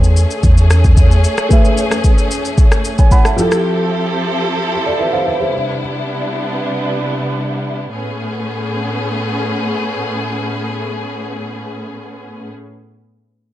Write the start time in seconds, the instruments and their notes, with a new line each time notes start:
Already playing: fingered electric bass E2, grand piano A3 G#4 B4 C#5, string section A3 C#4 G#4
0.04 shaker
0.17 shaker
0.31 shaker
0.43 fingered electric bass E2, kick, shaker
0.57 shaker
0.70 cross-stick, shaker
0.84 kick, shaker
0.97 kick, shaker
1.11 shaker
1.24 shaker
1.38 cross-stick, shaker
1.49 grand piano A3 G#4 B4 E5, kick, shaker
1.65 shaker
1.78 shaker
1.91 cross-stick, shaker
2.04 kick, shaker
2.18 shaker
2.31 shaker
2.45 shaker
2.58 kick, shaker
2.72 cross-stick, shaker
2.85 shaker
2.98 grand piano C#5 G#5, kick, shaker
3.11 grand piano F#5 B5, kick, shaker
3.25 grand piano E5 A5, cross-stick, shaker
3.36 grand piano F3 E4 G4 A4, string section F3 C4 E4 G4 A4, shaker
3.52 cross-stick, shaker
4.86 grand piano A4 D5
4.99 grand piano B4 E5
5.13 grand piano C5 F5
5.26 grand piano B4 E5
5.40 grand piano G4 C5
5.53 string section C3 G3 B3 D4
7.93 string section A2 A3 B3 C#4 G#4